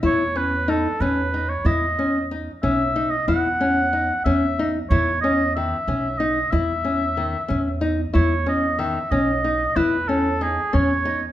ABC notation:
X:1
M:5/8
L:1/16
Q:1/4=93
K:C#m
V:1 name="Oboe"
c2 B2 A2 B3 c | d4 z2 e3 d | f6 e3 z | c2 d2 e4 d2 |
e8 z2 | c2 d2 e2 d4 | B2 A2 G2 c3 z |]
V:2 name="Nylon-string guitar"
E2 C2 D2 C2 D2 | E2 C2 D2 C2 D2 | E2 C2 D2 C2 D2 | E2 C2 D,2 C2 D2 |
E2 C2 D,2 C2 D2 | E2 C2 D,2 C2 D2 | E2 C2 D2 C2 D2 |]
V:3 name="Upright bass" clef=bass
E,,6 E,,4 | E,,6 B,,,4 | E,,6 E,,4 | E,,6 B,,,4 |
E,,6 E,,4 | E,,6 B,,,4 | E,,6 E,,4 |]